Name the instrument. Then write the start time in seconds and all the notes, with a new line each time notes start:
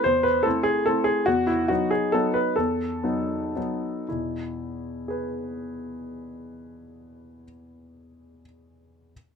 grand piano
0.04 E2 C5
0.23 B4
0.43 A3 C4 E4 A4
0.63 G#4
0.86 A3 C4 E4 A4
1.04 G#4
1.26 E2 F#4
1.47 E4
1.68 F#3 B3 D#4 F#4
1.91 G#4
2.12 F#3 B3 D#4 A4
2.34 B4
2.56 E2 A4
3.03 F#3 B3 D#4
3.56 F#3 B3 D#4
4.09 E2 B2 E4
5.08 G#4 B4